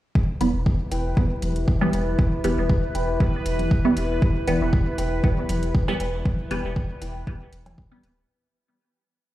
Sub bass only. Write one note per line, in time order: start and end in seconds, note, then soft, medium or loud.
0.41 0.52 E1 medium
0.54 0.75 E1 medium
0.91 1.13 E1 medium
1.42 1.64 E1 loud
1.93 2.15 E1 medium
2.44 2.55 E1 loud
2.58 2.79 E1 medium
2.95 3.17 E1 medium
3.46 3.67 E1 medium
3.97 4.18 E1 medium
4.47 4.59 E1 loud
4.61 4.82 E1 medium
4.98 5.20 E1 medium
5.49 5.71 E1 loud
6.00 6.22 E1 medium
6.51 6.62 E1 loud
6.64 6.86 E1 medium
7.02 7.23 E1 medium
7.52 7.74 E1 medium
8.03 8.25 D1 medium